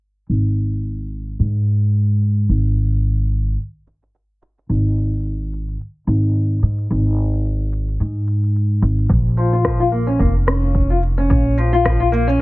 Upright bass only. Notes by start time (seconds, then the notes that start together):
0.29 G#1
1.39 G#2
2.49 G#1
4.69 G#1
6.07 G#1
6.63 G#2
6.90 G#1
8.00 G#2
8.82 G#1
9.10 A#1
10.20 F1
11.30 A#1